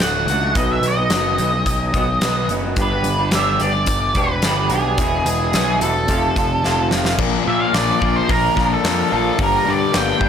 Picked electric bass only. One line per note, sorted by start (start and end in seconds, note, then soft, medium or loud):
0.00 0.25 D1 medium
0.26 0.55 C#2 medium
0.55 0.81 B1 medium
0.81 1.08 B1 medium
1.10 1.36 F#1 medium
1.38 1.64 B1 medium
1.66 1.92 B1 medium
1.93 2.20 B1 medium
2.21 2.47 B1 medium
2.49 2.75 F#1 medium
2.76 3.02 G1 loud
3.04 3.30 G1 medium
3.33 3.58 G1 medium
3.60 3.86 G1 medium
3.87 4.13 G1 medium
4.15 4.41 E1 medium
4.43 4.69 G1 medium
4.70 4.96 B1 medium
4.98 5.24 E1 medium
5.26 5.52 E1 medium
5.54 5.79 B1 medium
5.82 6.07 E1 medium
6.08 6.34 F1 medium
6.36 6.62 F1 medium
6.66 6.90 F1 medium
6.93 7.17 F1 medium
7.18 7.36 A#1 medium
7.47 7.65 A#2 medium
7.73 7.91 A#1 medium
8.02 8.20 A#1 medium
8.29 8.47 A#1 medium
8.57 8.74 A#1 medium
8.84 9.02 F2 medium
9.13 9.30 A#1 medium
9.39 9.57 G1 medium
9.68 9.85 G2 medium
9.95 10.12 G1 medium
10.20 10.29 G1 medium